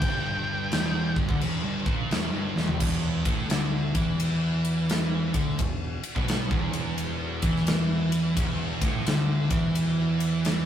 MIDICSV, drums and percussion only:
0, 0, Header, 1, 2, 480
1, 0, Start_track
1, 0, Key_signature, 1, "minor"
1, 0, Tempo, 696056
1, 17, Time_signature, 4, 2, 24, 8
1, 7348, End_track
2, 0, Start_track
2, 0, Title_t, "Drums"
2, 12, Note_on_c, 9, 36, 116
2, 12, Note_on_c, 9, 49, 65
2, 81, Note_off_c, 9, 36, 0
2, 81, Note_off_c, 9, 49, 0
2, 493, Note_on_c, 9, 49, 65
2, 503, Note_on_c, 9, 38, 124
2, 562, Note_off_c, 9, 49, 0
2, 572, Note_off_c, 9, 38, 0
2, 802, Note_on_c, 9, 36, 107
2, 871, Note_off_c, 9, 36, 0
2, 887, Note_on_c, 9, 36, 111
2, 956, Note_off_c, 9, 36, 0
2, 974, Note_on_c, 9, 49, 67
2, 1043, Note_off_c, 9, 49, 0
2, 1283, Note_on_c, 9, 36, 113
2, 1352, Note_off_c, 9, 36, 0
2, 1456, Note_on_c, 9, 49, 61
2, 1465, Note_on_c, 9, 38, 112
2, 1525, Note_off_c, 9, 49, 0
2, 1534, Note_off_c, 9, 38, 0
2, 1775, Note_on_c, 9, 38, 68
2, 1844, Note_off_c, 9, 38, 0
2, 1845, Note_on_c, 9, 43, 104
2, 1914, Note_off_c, 9, 43, 0
2, 1933, Note_on_c, 9, 36, 120
2, 1933, Note_on_c, 9, 57, 124
2, 2002, Note_off_c, 9, 36, 0
2, 2002, Note_off_c, 9, 57, 0
2, 2244, Note_on_c, 9, 36, 120
2, 2245, Note_on_c, 9, 51, 88
2, 2313, Note_off_c, 9, 36, 0
2, 2314, Note_off_c, 9, 51, 0
2, 2412, Note_on_c, 9, 51, 117
2, 2422, Note_on_c, 9, 38, 114
2, 2481, Note_off_c, 9, 51, 0
2, 2491, Note_off_c, 9, 38, 0
2, 2722, Note_on_c, 9, 51, 82
2, 2723, Note_on_c, 9, 36, 100
2, 2791, Note_off_c, 9, 51, 0
2, 2792, Note_off_c, 9, 36, 0
2, 2894, Note_on_c, 9, 51, 113
2, 2963, Note_off_c, 9, 51, 0
2, 3205, Note_on_c, 9, 51, 77
2, 3274, Note_off_c, 9, 51, 0
2, 3375, Note_on_c, 9, 51, 106
2, 3385, Note_on_c, 9, 38, 112
2, 3444, Note_off_c, 9, 51, 0
2, 3454, Note_off_c, 9, 38, 0
2, 3683, Note_on_c, 9, 51, 82
2, 3684, Note_on_c, 9, 36, 106
2, 3752, Note_off_c, 9, 51, 0
2, 3753, Note_off_c, 9, 36, 0
2, 3853, Note_on_c, 9, 51, 109
2, 3854, Note_on_c, 9, 36, 97
2, 3922, Note_off_c, 9, 51, 0
2, 3923, Note_off_c, 9, 36, 0
2, 4162, Note_on_c, 9, 51, 84
2, 4231, Note_off_c, 9, 51, 0
2, 4248, Note_on_c, 9, 36, 109
2, 4317, Note_off_c, 9, 36, 0
2, 4333, Note_on_c, 9, 51, 104
2, 4343, Note_on_c, 9, 38, 112
2, 4402, Note_off_c, 9, 51, 0
2, 4412, Note_off_c, 9, 38, 0
2, 4489, Note_on_c, 9, 36, 121
2, 4558, Note_off_c, 9, 36, 0
2, 4644, Note_on_c, 9, 51, 76
2, 4713, Note_off_c, 9, 51, 0
2, 4812, Note_on_c, 9, 51, 109
2, 4881, Note_off_c, 9, 51, 0
2, 5119, Note_on_c, 9, 51, 89
2, 5121, Note_on_c, 9, 36, 108
2, 5188, Note_off_c, 9, 51, 0
2, 5190, Note_off_c, 9, 36, 0
2, 5216, Note_on_c, 9, 38, 35
2, 5285, Note_off_c, 9, 38, 0
2, 5288, Note_on_c, 9, 51, 112
2, 5297, Note_on_c, 9, 38, 115
2, 5357, Note_off_c, 9, 51, 0
2, 5366, Note_off_c, 9, 38, 0
2, 5600, Note_on_c, 9, 51, 89
2, 5669, Note_off_c, 9, 51, 0
2, 5770, Note_on_c, 9, 36, 123
2, 5771, Note_on_c, 9, 51, 123
2, 5839, Note_off_c, 9, 36, 0
2, 5840, Note_off_c, 9, 51, 0
2, 6078, Note_on_c, 9, 36, 120
2, 6079, Note_on_c, 9, 51, 92
2, 6147, Note_off_c, 9, 36, 0
2, 6148, Note_off_c, 9, 51, 0
2, 6251, Note_on_c, 9, 51, 117
2, 6261, Note_on_c, 9, 38, 119
2, 6320, Note_off_c, 9, 51, 0
2, 6330, Note_off_c, 9, 38, 0
2, 6555, Note_on_c, 9, 51, 85
2, 6557, Note_on_c, 9, 36, 111
2, 6624, Note_off_c, 9, 51, 0
2, 6625, Note_off_c, 9, 36, 0
2, 6726, Note_on_c, 9, 51, 110
2, 6795, Note_off_c, 9, 51, 0
2, 7037, Note_on_c, 9, 51, 86
2, 7106, Note_off_c, 9, 51, 0
2, 7205, Note_on_c, 9, 51, 105
2, 7215, Note_on_c, 9, 38, 109
2, 7274, Note_off_c, 9, 51, 0
2, 7284, Note_off_c, 9, 38, 0
2, 7348, End_track
0, 0, End_of_file